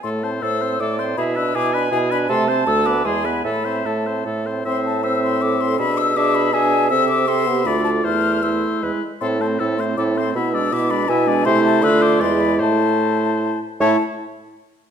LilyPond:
<<
  \new Staff \with { instrumentName = "Flute" } { \time 3/4 \key a \minor \tempo 4 = 158 c'''8 a''8 e'''4 d'''8 c'''8 | b''8 e'''8 d'''8 b''8 gis''8 b''8 | c'''8 a''8 e'''8 d'''8 c'''8 b''8 | b''4 a''4 r4 |
c'''8 a''8 e'''8 c'''8 d'''8 c'''8 | b''8 e'''8 d'''8 b''8 gis''4 | e'''8 d'''8 c'''4 b''8 a''8 | f'''4 e'''4. r8 |
c'''8 a''8 e'''8 c'''8 d'''8 c'''8 | b''8 e'''8 d'''8 b''8 gis''4 | c'''8 a''8 e'''8 d'''8 c'''8 b''8 | a''2~ a''8 r8 |
a''8 r2 r8 | }
  \new Staff \with { instrumentName = "Oboe" } { \time 3/4 \key a \minor a'8 c''8 a'8 c''8 a'8 c''8 | gis'8 b'8 gis'8 b'8 gis'8 b'8 | a'8 c''8 a'8 b'8 gis'8 b'8 | a'8 c''8 a'8 c''8 a'8 c''8 |
e''4 e''2 | e''4 e''4 e''4 | e''4 e''4 d''4 | c''4 c''4 b'8 r8 |
a'8 c''8 a'8 c''8 a'8 c''8 | e''8 d''8 e''8 d''8 e''8 d''8 | c''4 b'8 c''8 d''4 | c''2~ c''8 r8 |
cis''8 r2 r8 | }
  \new Staff \with { instrumentName = "Clarinet" } { \time 3/4 \key a \minor r4 c''4 d''4 | e''4 gis''2 | a''2 gis''4 | e''2~ e''8 r8 |
c''4 c''4 a'4 | gis'4 gis'4 gis'4 | a'4 a'8 g'8 f'4 | e'4 e'4 e'8 r8 |
e'8 c'8 e'8 c'8 e'8 c'8 | e'8 d'8 e'8 d'8 e'8 d'8 | e'4 f'4 e'4 | e'2~ e'8 r8 |
e'8 r2 r8 | }
  \new Staff \with { instrumentName = "French horn" } { \time 3/4 \key a \minor a8 c'8 a8 c'8 a8 c'8 | e'8 d'8 e'8 d'8 e'8 d'8 | a8 c'8 a8 b8 gis8 b8 | a8 c'8 a8 c'8 a8 c'8 |
c'4 c'2 | d'4 d'4 d'4 | c'4 c'8 b8 a4 | a4 a4 gis8 r8 |
c'8 a8 c'8 a8 c'8 a8 | b8 gis8 b8 gis8 b8 gis8 | a4 a4 gis4 | a2~ a8 r8 |
a8 r2 r8 | }
  \new Staff \with { instrumentName = "Bassoon" } { \clef bass \time 3/4 \key a \minor a,4 a,4 a,4 | b,4 b,4 b,4 | c4 d,4 e,4 | a,4 a,4 a,4 |
a,2. | b,2. | c2 d,4 | e,2 e,8 r8 |
a,4 a,4 a,4 | b,4 b,4 b,4 | c4 d4 e,4 | a,2~ a,8 r8 |
a,8 r2 r8 | }
>>